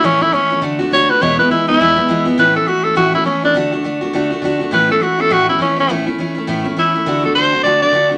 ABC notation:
X:1
M:4/4
L:1/8
Q:"Swing" 1/4=205
K:A
V:1 name="Tenor saxophone"
C E C2 z2 c B | c B E E4 z | B A F A F E C D | z8 |
B A F A F E C C | z6 E2- | E A =c2 d d2 z |]
V:2 name="Steel-string acoustic guitar"
[A,,E,A,CE] [A,CE] [E,A,CE] [A,CE] [D,A,DF] [A,DF] [D,A,DF] [A,DF] | [E,,B,,E,G,B,E] [E,G,B,E] [E,G,B,E] [E,G,B,E] [E,,B,,E,G,B,E] [E,G,B,E] [E,G,B,E] [E,G,B,E] | [A,,E,A,CE] [A,CE] [E,A,CE] [A,CE] [A,,E,A,CE] [A,CE] [E,A,CE] [A,CE] | [D,A,DF] [A,DF] [D,A,DF] [A,DF] [D,A,DF] [A,DF] [D,A,DF] [A,DF] |
[A,,E,A,CE] [A,CE] [E,A,CE] [A,CE] [A,,E,A,CE] [A,CE] [E,A,CE] [A,CE] | [A,,E,A,CE] [A,CE] [E,A,CE] [A,CE] [A,,E,A,CE] [A,CE] [E,A,CE] [A,CE] | [D,A,DF] [A,DF] [D,A,DF] [A,DF] [D,A,DF] [A,DF] [D,A,DF] [A,DF] |]